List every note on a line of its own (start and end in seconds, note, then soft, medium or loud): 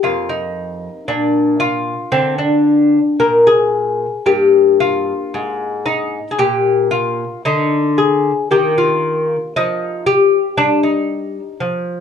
0.03 0.88 F2 medium
0.03 4.23 A#3 soft
0.03 0.30 F4 medium
0.29 1.06 D#4 medium
1.08 1.93 A#2 medium
1.08 1.59 D4 medium
1.60 2.11 F4 medium
2.12 2.98 D3 medium
2.12 2.38 C4 medium
2.38 3.16 D4 medium
3.20 4.05 A#2 medium
3.20 3.46 A#4 medium
3.47 4.24 G#4 medium
4.26 5.12 G2 medium
4.26 8.47 A#3 soft
4.26 4.78 G4 medium
4.80 5.82 F4 medium
5.34 6.18 G#2 medium
5.86 6.30 D#4 medium
6.31 6.38 G#4 medium
6.39 7.24 A#2 medium
6.39 6.89 G4 medium
6.91 7.42 F4 medium
7.45 8.30 D3 medium
7.45 7.96 D#4 medium
7.98 8.49 G#4 medium
8.51 9.35 D#3 medium
8.51 12.00 A#3 soft
8.51 8.78 G4 medium
8.78 9.53 F4 medium
9.56 10.38 F3 medium
9.56 10.05 D#4 medium
10.06 10.55 G4 medium
10.57 11.39 G3 medium
10.57 10.83 D4 medium
10.83 11.57 D#4 medium
11.60 12.00 F3 medium